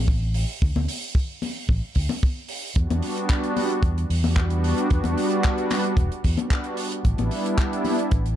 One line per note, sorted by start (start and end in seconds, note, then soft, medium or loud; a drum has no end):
0.00 0.44 A1 medium
0.08 kick loud
0.34 open hi-hat loud
0.62 0.73 D2 medium
0.62 kick loud
0.76 0.86 D2 medium
0.76 high conga medium
0.88 open hi-hat loud
1.15 kick loud
1.42 open hi-hat loud
1.42 high conga medium
1.69 1.80 A1 medium
1.69 kick loud
1.95 2.07 D2 medium
1.95 kick medium
1.95 open hi-hat loud
2.09 open hi-hat medium
2.09 high conga medium
2.23 kick loud
2.49 open hi-hat loud
2.75 2.87 E2 medium
2.75 3.53 G3 medium
2.75 3.53 B3 medium
2.75 3.54 D4 medium
2.75 3.54 F#4 medium
2.75 kick loud
2.75 closed hi-hat medium
2.90 3.00 E2 medium
2.90 closed hi-hat soft
2.90 high conga medium
3.02 open hi-hat medium
3.17 closed hi-hat medium
3.30 kick loud
3.30 clap loud
3.30 closed hi-hat medium
3.44 closed hi-hat medium
3.56 open hi-hat loud
3.56 high conga medium
3.70 closed hi-hat soft
3.83 4.04 E2 medium
3.83 kick loud
3.83 closed hi-hat medium
3.98 closed hi-hat soft
4.10 4.72 E2 medium
4.10 open hi-hat loud
4.23 4.87 G3 medium
4.23 4.87 B3 medium
4.23 4.87 D4 medium
4.23 4.88 F#4 loud
4.23 open hi-hat medium
4.23 high conga medium
4.36 kick loud
4.36 clap medium
4.50 closed hi-hat soft
4.64 open hi-hat loud
4.78 closed hi-hat medium
4.89 5.01 E2 medium
4.89 5.67 G3 medium
4.89 5.67 B3 medium
4.89 5.68 D4 medium
4.89 5.68 F#4 medium
4.89 kick loud
4.89 closed hi-hat medium
5.04 5.14 E2 medium
5.04 closed hi-hat medium
5.04 high conga medium
5.18 open hi-hat medium
5.31 closed hi-hat soft
5.43 kick loud
5.43 clap medium
5.43 closed hi-hat medium
5.58 closed hi-hat soft
5.70 clap medium
5.70 open hi-hat loud
5.70 high conga medium
5.84 closed hi-hat soft
5.97 6.08 E1 medium
5.97 kick loud
5.97 closed hi-hat medium
6.12 closed hi-hat soft
6.24 6.35 E2 medium
6.24 kick medium
6.24 open hi-hat medium
6.37 closed hi-hat soft
6.37 high conga medium
6.51 kick medium
6.51 clap loud
6.51 closed hi-hat medium
6.64 closed hi-hat soft
6.77 open hi-hat loud
6.92 closed hi-hat medium
7.03 7.16 A1 medium
7.03 7.81 G3 medium
7.03 7.82 B3 medium
7.03 7.82 D4 medium
7.03 7.82 E4 medium
7.03 kick medium
7.03 closed hi-hat medium
7.18 7.28 A1 medium
7.18 closed hi-hat medium
7.18 high conga medium
7.31 open hi-hat medium
7.46 closed hi-hat medium
7.58 kick loud
7.58 clap loud
7.58 closed hi-hat medium
7.73 closed hi-hat medium
7.85 open hi-hat loud
7.85 high conga medium
7.99 closed hi-hat medium
8.11 8.33 A1 medium
8.11 kick loud
8.11 closed hi-hat medium
8.26 closed hi-hat soft